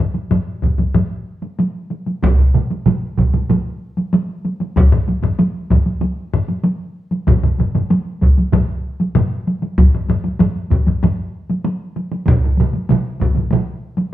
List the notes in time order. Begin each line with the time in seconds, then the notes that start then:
0.00 taiko low-mid
0.14 taiko high
0.31 taiko low-mid, taiko high
0.62 taiko, taiko low-mid, taiko high
0.78 taiko low-mid, taiko high
0.94 taiko low-mid, taiko high
1.42 taiko high
1.59 taiko high
1.90 taiko high
2.06 taiko high
2.23 taiko, taiko mid, taiko high
2.39 taiko mid
2.54 taiko mid, taiko high
2.71 taiko high
2.86 taiko mid, taiko high
3.18 taiko, taiko mid, taiko high
3.34 taiko mid, taiko high
3.50 taiko mid, taiko high
3.97 taiko high
4.13 taiko high
4.45 taiko high
4.60 taiko high
4.76 taiko, taiko high
4.92 taiko low-mid
5.08 taiko high
5.23 taiko low-mid, taiko high
5.39 taiko high
5.70 taiko, taiko low-mid, taiko high
5.86 taiko high
6.01 taiko high
6.34 taiko low-mid
6.49 taiko high
6.64 taiko high
7.11 taiko high
7.27 taiko, taiko low-mid, taiko mid, taiko high
7.43 taiko low-mid, taiko mid
7.58 taiko low-mid, taiko mid, taiko high
7.75 taiko low-mid, taiko mid, taiko high
7.90 taiko high
8.21 taiko, taiko high
8.38 taiko high
8.53 taiko, taiko low-mid, taiko mid, taiko high
9.00 taiko high
9.15 taiko low-mid, taiko mid, taiko high
9.47 taiko high
9.62 taiko high
9.78 taiko, taiko low-mid, taiko high
9.95 taiko low-mid
10.09 taiko low-mid, taiko high
10.24 taiko high
10.39 taiko low-mid, taiko high
10.71 taiko, taiko low-mid, taiko high
10.87 taiko low-mid, taiko high
11.03 taiko low-mid, taiko high
11.50 taiko high
11.65 taiko high
11.96 taiko high
12.12 taiko high
12.27 taiko, taiko mid, taiko high
12.44 taiko mid
12.57 taiko mid, taiko high
12.73 taiko high
12.89 taiko mid, taiko high
13.20 taiko, taiko mid, taiko high
13.35 taiko mid, taiko high
13.51 taiko mid, taiko high
13.97 taiko high